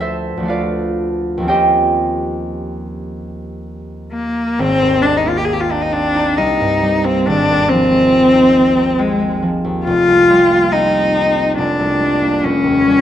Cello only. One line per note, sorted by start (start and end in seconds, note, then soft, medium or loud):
4.12 4.61 A#3 medium
4.60 5.04 C4 medium
5.02 5.18 D4 medium
5.17 5.30 D#4 medium
5.29 5.39 F4 medium
5.37 5.46 G4 medium
5.44 5.54 G#4 medium
5.53 5.62 G4 medium
5.61 5.73 F4 medium
5.71 5.84 D4 medium
5.82 5.95 D#4 medium
5.93 6.39 D4 medium
6.37 7.06 D#4 medium
7.05 7.28 C4 medium
7.26 7.70 D4 medium
7.69 9.00 C4 medium
8.98 9.41 G#3 medium
9.85 10.74 F4 medium
10.72 11.57 D#4 medium
11.58 12.45 D4 medium
12.43 13.01 C#4 medium